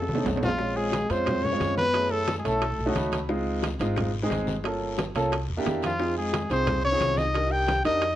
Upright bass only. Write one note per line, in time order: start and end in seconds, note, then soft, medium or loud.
0.08 0.24 C2 medium
0.25 1.04 A#1 medium
1.09 1.57 F2 medium
1.60 2.39 F#2 medium
2.45 2.76 B1 medium
2.78 2.94 B1 medium
2.95 3.74 C#2 medium
3.80 4.27 G#1 medium
4.30 5.09 G1 medium
5.15 5.46 C2 medium
5.49 5.64 E2 medium
5.65 6.44 F2 medium
6.50 6.97 C2 medium
7.00 7.79 C2 medium
7.85 8.15 F2 medium